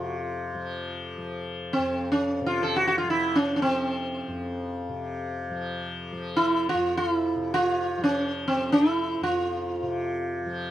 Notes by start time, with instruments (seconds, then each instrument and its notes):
Already playing: tanpura F2 C3 F3, sitar F4
0.02 sitar F#4
0.19 sitar F4
0.55 tanpura F3
1.17 tanpura F3
1.73 sitar C4
1.78 tanpura F2
2.12 sitar C#4
2.41 tanpura C3
2.46 sitar F4
2.63 sitar A4
2.76 sitar F#4
2.87 sitar F#4
2.98 sitar F4
3.03 tanpura F3
3.10 sitar E4
3.36 sitar C#4
3.56 sitar C#4
3.62 tanpura F3, sitar C4
4.28 tanpura F2
4.89 tanpura C3
5.50 tanpura F3
6.12 tanpura F3
6.36 sitar E4
6.69 sitar F4
6.74 tanpura F2
6.97 sitar F4
7.09 sitar E4
7.36 tanpura C3
7.54 sitar F4
7.98 tanpura F3
8.04 sitar C#4
8.48 sitar C4
8.56 tanpura F3
8.72 sitar E4
9.21 tanpura F2, sitar F4
9.82 tanpura C3
10.46 tanpura F3